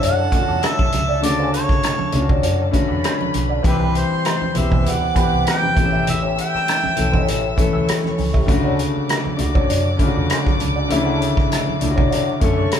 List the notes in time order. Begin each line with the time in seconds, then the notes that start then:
Already playing: D3 A3 C#4 D4 E4 F#4 A4 A5
0.02 F#2 D4 F#4 C#5 F#5, closed hi-hat, muted conga
0.19 muted conga
0.31 D3 A3 C#4 F4, muted clean electric guitar stroke, kick, closed hi-hat
0.41 F#4
0.48 E2 D4 F#4 D5
0.63 D4 F#4 C#5 E5, cross-stick, closed hi-hat, muted conga
0.79 kick, muted conga, high conga
0.92 C#2, muted clean electric guitar stroke, closed hi-hat, high conga
1.09 D4 F#4 D5
1.21 D2 C#3 D3 A3 F#4 D5, muted clean electric guitar stroke, closed hi-hat, muted conga
1.39 D4 F#4 C#5
1.53 C#5, muted clean electric guitar stroke, closed hi-hat
1.69 muted clean electric guitar stroke, muted fingered electric bass stroke, kick, cross-stick
1.83 muted clean electric guitar stroke, cross-stick, closed hi-hat, muted conga
1.99 muted clean electric guitar stroke, muted fingered electric bass stroke, muted conga, high conga
2.12 C#2 A3 C#4 D4, closed hi-hat, low conga
2.16 F4
2.22 F#4
2.29 D4 F#4 C#5, kick, low conga
2.42 F#2 D4 F#4 C#5, closed hi-hat
2.71 D3 A3 C#4 F#4 B4 B5, muted clean electric guitar stroke, kick, closed hi-hat
2.89 E2 D4 F#4 D5
3.03 D4 F#4 C#5, cross-stick, closed hi-hat, muted conga
3.21 muted conga, high conga
3.34 B1, muted clean electric guitar stroke, closed hi-hat, high conga
3.49 D4 F#4 D5
3.63 C2 E3 G3 C4 G4 C6, muted clean electric guitar stroke, kick, closed hi-hat
3.67 E4 G4 B4
3.80 C4 E4 B4, muted conga
3.93 C5, muted clean electric guitar stroke, closed hi-hat
4.10 muted clean electric guitar stroke, muted fingered electric bass stroke
4.25 muted clean electric guitar stroke, cross-stick, closed hi-hat
4.41 muted fingered electric bass stroke, muted clean electric guitar stroke, high conga
4.54 B1 E3 B3 C4, closed hi-hat, low conga
4.58 G4 E5
4.70 C4 E4 B4, kick, low conga
4.86 D2 D5 F#5 D6, closed hi-hat, muted conga
5.01 muted clean electric guitar stroke, muted conga
5.15 E3 B3 C4 E4 G4 B4, kick, closed hi-hat
5.32 C2, muted clean electric guitar stroke
5.45 C4 E4 B4, cross-stick, closed hi-hat
5.50 G5
5.64 muted conga, high conga
5.75 A1 E3 A3 B3 G4 E5 E6, muted clean electric guitar stroke, kick, closed hi-hat, high conga
5.84 C#4
5.93 E4 G4 E5
6.06 E5, muted clean electric guitar stroke, closed hi-hat, low conga
6.23 E4 G4 C#5, muted conga
6.37 G5, muted clean electric guitar stroke, closed hi-hat
6.54 muted clean electric guitar stroke, muted fingered electric bass stroke, cross-stick
6.68 muted clean electric guitar stroke, cross-stick, closed hi-hat, muted conga
6.83 muted clean electric guitar stroke, muted fingered electric bass stroke, muted conga, high conga
6.96 B1 E3 A3 C#4 A4, closed hi-hat, low conga
7.12 E4 G4 C#5, kick, low conga
7.26 A1 E4 G4 C#5, closed hi-hat, muted conga
7.56 E3 A3 C#4 A4, muted clean electric guitar stroke, kick, closed hi-hat, high conga
7.73 D2 E4 G4 E5
7.87 E4 G4 C#5 C#6, cross-stick, closed hi-hat
8.04 cross-stick, muted conga, high conga
8.18 C#2, muted clean electric guitar stroke, open hi-hat, high conga
8.34 E4 G4 E5, kick
8.46 D2 C#3 D3 A3 F#4 D5 D6, muted clean electric guitar stroke, kick, closed hi-hat
8.64 D4 F#4 C#5
8.78 muted clean electric guitar stroke, closed hi-hat
8.94 muted clean electric guitar stroke, muted fingered electric bass stroke
9.08 muted clean electric guitar stroke, cross-stick, closed hi-hat, muted conga
9.24 muted clean electric guitar stroke, muted fingered electric bass stroke, muted conga, high conga
9.37 C#2 A3 D4, closed hi-hat, low conga
9.41 F#4
9.55 D4 F#4 C#5, kick, low conga
9.69 F#2 D4 F#4 C#5, closed hi-hat, muted conga
9.97 C#3 D3 A3, muted clean electric guitar stroke, kick, closed hi-hat
10.01 F4
10.08 F#4
10.16 E2 D4 F#4 D5
10.29 D4 F#4 C#5, cross-stick, closed hi-hat, muted conga
10.46 kick, cross-stick, high conga
10.59 C#2, muted clean electric guitar stroke, closed hi-hat, high conga
10.76 D4 F#4 D5
10.89 D2 C#3 D3 A3 E4, muted clean electric guitar stroke, closed hi-hat
11.05 D4 F#4 C#5
11.20 muted clean electric guitar stroke, closed hi-hat
11.36 muted clean electric guitar stroke, kick, cross-stick
11.50 muted clean electric guitar stroke, cross-stick, closed hi-hat, muted conga
11.67 muted clean electric guitar stroke, muted fingered electric bass stroke, high conga
11.80 C#2 A3 D4 E4, closed hi-hat, low conga
11.90 F#4
11.96 D4 F#4 C#5, kick, low conga
12.10 D4 F#4 C#5, closed hi-hat, muted conga
12.29 muted conga
12.40 F#2 D3 A3 C#4 A4 C#5 C#6, muted clean electric guitar stroke, kick, closed hi-hat
12.57 D4 F#4 D5
12.71 D4 F#4 C#5, cross-stick, closed hi-hat